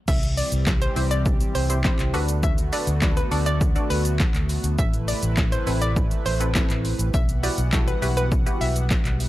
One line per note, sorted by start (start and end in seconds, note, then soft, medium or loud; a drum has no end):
0.08 0.41 C2 loud
0.08 2.12 E3 medium
0.08 2.12 G3 medium
0.08 2.12 C4 medium
0.08 2.12 G4 loud
0.08 0.30 E5 loud
0.08 kick loud
0.08 crash loud
0.08 shaker medium
0.23 closed hi-hat medium
0.23 shaker medium
0.37 0.59 D5 medium
0.37 open hi-hat medium
0.37 shaker medium
0.52 0.85 C2 medium
0.52 closed hi-hat medium
0.52 shaker medium
0.67 kick loud
0.67 snare loud
0.67 clap loud
0.67 shaker medium
0.82 0.93 C5 medium
0.82 closed hi-hat medium
0.82 shaker medium
0.96 1.40 C2 medium
0.96 1.41 C4 medium
0.96 1.41 E4 medium
0.96 1.42 G4 medium
0.96 1.42 C5 medium
0.96 open hi-hat medium
0.96 shaker medium
1.11 1.33 D5 medium
1.11 closed hi-hat medium
1.11 shaker medium
1.26 kick loud
1.26 shaker medium
1.40 closed hi-hat medium
1.40 shaker medium
1.55 1.88 C2 medium
1.55 1.66 C5 medium
1.55 open hi-hat medium
1.55 shaker medium
1.69 1.79 C4 medium
1.69 1.79 E4 medium
1.69 1.79 G4 medium
1.69 1.79 C5 medium
1.69 closed hi-hat medium
1.69 shaker medium
1.84 2.14 C4 medium
1.84 2.14 E4 medium
1.84 2.14 G4 medium
1.84 2.14 C5 loud
1.84 kick loud
1.84 snare loud
1.84 clap loud
1.84 shaker medium
1.99 2.10 C2 loud
1.99 clap medium
1.99 closed hi-hat medium
1.99 shaker medium
2.14 2.69 D2 loud
2.14 4.76 D3 medium
2.14 4.76 A3 medium
2.14 4.76 B3 medium
2.14 2.61 D4 loud
2.14 4.76 F#4 loud
2.14 2.61 F#4 medium
2.14 2.61 A4 medium
2.14 2.61 B4 loud
2.14 open hi-hat medium
2.14 shaker medium
2.29 closed hi-hat medium
2.29 shaker medium
2.43 2.65 E5 loud
2.43 kick loud
2.43 shaker medium
2.58 closed hi-hat medium
2.58 shaker medium
2.72 2.91 D4 medium
2.72 2.91 F#4 medium
2.72 2.91 A4 medium
2.72 2.91 B4 medium
2.72 2.95 D5 medium
2.72 open hi-hat medium
2.72 shaker medium
2.87 3.20 D2 medium
2.87 closed hi-hat medium
2.87 shaker medium
3.02 3.20 D4 medium
3.02 3.20 F#4 medium
3.02 3.20 A4 medium
3.02 3.20 B4 loud
3.02 kick loud
3.02 snare loud
3.02 clap loud
3.02 shaker medium
3.17 3.28 B4 medium
3.17 closed hi-hat medium
3.17 shaker medium
3.31 3.75 D2 loud
3.31 3.59 D4 medium
3.31 3.59 F#4 medium
3.31 3.59 A4 medium
3.31 3.59 D5 medium
3.31 open hi-hat medium
3.31 shaker medium
3.46 3.68 D5 medium
3.46 closed hi-hat medium
3.46 shaker medium
3.61 kick loud
3.61 shaker medium
3.75 4.48 D4 medium
3.75 4.48 F#4 medium
3.75 4.48 A4 medium
3.75 4.48 D5 medium
3.75 closed hi-hat medium
3.75 shaker medium
3.90 4.23 D2 medium
3.90 4.01 B4 medium
3.90 open hi-hat medium
3.90 shaker medium
4.05 closed hi-hat medium
4.05 shaker medium
4.20 kick loud
4.20 snare medium
4.20 clap loud
4.20 shaker medium
4.34 4.56 D2 loud
4.34 clap medium
4.34 closed hi-hat medium
4.34 shaker medium
4.49 open hi-hat medium
4.49 shaker medium
4.64 4.75 D2 loud
4.64 closed hi-hat medium
4.64 shaker medium
4.78 5.12 A1 loud
4.78 7.11 C3 medium
4.78 7.11 A3 medium
4.78 7.11 E4 loud
4.78 7.11 B4 medium
4.78 5.00 E5 loud
4.78 kick loud
4.78 shaker medium
4.93 closed hi-hat medium
4.93 shaker medium
5.08 5.30 D5 medium
5.08 open hi-hat medium
5.08 shaker medium
5.23 5.56 A1 medium
5.23 closed hi-hat medium
5.23 shaker medium
5.37 kick loud
5.37 snare loud
5.37 clap loud
5.37 shaker medium
5.52 5.63 C5 medium
5.52 closed hi-hat medium
5.52 shaker medium
5.67 6.11 A1 medium
5.67 6.12 C4 medium
5.67 6.12 E4 medium
5.67 6.12 A4 medium
5.67 6.12 B4 medium
5.67 open hi-hat medium
5.67 shaker medium
5.82 6.03 D5 medium
5.82 closed hi-hat medium
5.82 shaker medium
5.96 kick loud
5.96 shaker medium
6.11 closed hi-hat medium
6.11 shaker medium
6.26 6.59 A1 medium
6.26 6.37 C5 medium
6.26 open hi-hat medium
6.26 shaker soft
6.40 6.49 C4 medium
6.40 6.49 E4 medium
6.40 6.49 A4 medium
6.40 6.50 B4 medium
6.40 closed hi-hat medium
6.40 shaker medium
6.55 7.09 C4 medium
6.55 7.09 E4 medium
6.55 7.10 A4 medium
6.55 7.10 B4 loud
6.55 kick loud
6.55 snare medium
6.55 clap loud
6.55 shaker medium
6.70 6.92 A1 loud
6.70 clap medium
6.70 closed hi-hat medium
6.70 shaker medium
6.85 open hi-hat medium
6.85 shaker medium
6.99 7.10 A1 loud
6.99 closed hi-hat medium
6.99 shaker medium
7.14 7.47 B1 loud
7.14 9.29 E3 medium
7.14 9.29 G3 medium
7.14 9.29 B3 medium
7.14 7.36 E5 loud
7.14 9.29 F#5 loud
7.14 kick loud
7.14 shaker medium
7.29 closed hi-hat medium
7.29 shaker medium
7.43 7.61 E4 medium
7.43 7.61 F#4 medium
7.43 7.61 G4 medium
7.43 7.62 B4 medium
7.43 7.65 D5 medium
7.43 open hi-hat medium
7.43 shaker medium
7.58 7.91 B1 medium
7.58 closed hi-hat medium
7.58 shaker medium
7.73 7.91 E4 medium
7.73 7.91 F#4 medium
7.73 7.91 G4 medium
7.73 7.91 A4 loud
7.73 kick loud
7.73 snare loud
7.73 clap loud
7.73 shaker medium
7.88 7.98 B4 medium
7.88 closed hi-hat medium
7.88 shaker medium
8.02 8.46 B1 loud
8.02 8.29 E4 medium
8.02 8.29 F#4 medium
8.02 8.29 G4 medium
8.02 8.29 B4 loud
8.02 open hi-hat medium
8.02 shaker medium
8.17 8.39 B4 medium
8.17 closed hi-hat medium
8.17 shaker medium
8.32 kick loud
8.32 shaker medium
8.46 9.19 E4 medium
8.46 9.19 F#4 medium
8.46 9.19 G4 medium
8.46 9.19 B4 medium
8.46 closed hi-hat medium
8.46 shaker medium
8.61 8.94 B1 medium
8.61 8.72 E5 medium
8.61 open hi-hat medium
8.61 shaker medium
8.76 closed hi-hat medium
8.76 shaker medium
8.90 kick loud
8.90 snare loud
8.90 clap loud
8.90 shaker medium
9.05 9.27 B1 loud
9.05 clap medium
9.05 closed hi-hat medium
9.05 shaker medium
9.20 open hi-hat medium
9.20 shaker medium